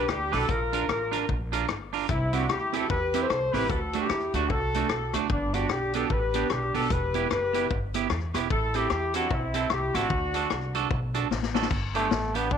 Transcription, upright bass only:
0.09 0.29 D2 medium
0.33 0.47 B1 medium
0.49 0.83 A#1 medium
0.89 1.23 A1 medium
1.29 1.63 A#1 medium
1.70 2.04 G1 medium
2.09 2.43 C2 loud
2.50 2.84 D2 medium
2.90 3.24 E2 medium
3.30 3.50 C2 medium
3.54 3.67 A1 medium
3.70 4.04 D2 loud
4.10 4.30 E2 medium
4.34 4.47 D2 medium
4.50 4.84 C2 medium
4.90 5.10 B1 medium
5.14 5.27 D2 medium
5.30 5.64 G1 loud
5.71 6.04 B1 medium
6.10 6.44 A1 medium
6.51 6.71 B1 medium
6.75 6.88 B1 medium
6.91 7.25 E1 loud
7.31 7.65 F#1 medium
7.71 8.05 G1 medium
8.11 8.31 E2 medium
8.34 8.48 E1 medium
8.51 8.85 A1 loud
8.91 9.25 E2 medium
9.31 9.65 B1 medium
9.71 9.91 C2 medium
9.94 10.08 A1 medium
10.10 10.45 D2 loud
10.52 10.85 C2 medium
10.91 11.25 B1 loud
11.31 11.65 A1 medium
11.71 12.05 G1 loud
12.11 12.52 A1 medium
12.52 12.58 B1 loud

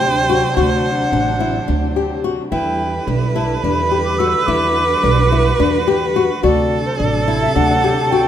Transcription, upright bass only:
0.00 0.41 D2 medium
0.57 1.03 D2 loud
1.12 1.58 A1 medium
1.69 2.37 D2 medium
2.52 2.98 E2 medium
3.07 3.53 B1 medium
3.64 4.33 E2 medium
4.48 4.94 E2 loud
5.04 5.50 B1 medium
5.60 6.29 E2 medium
6.44 6.89 D2 loud
7.00 7.46 A1 medium
7.56 8.24 D2 medium

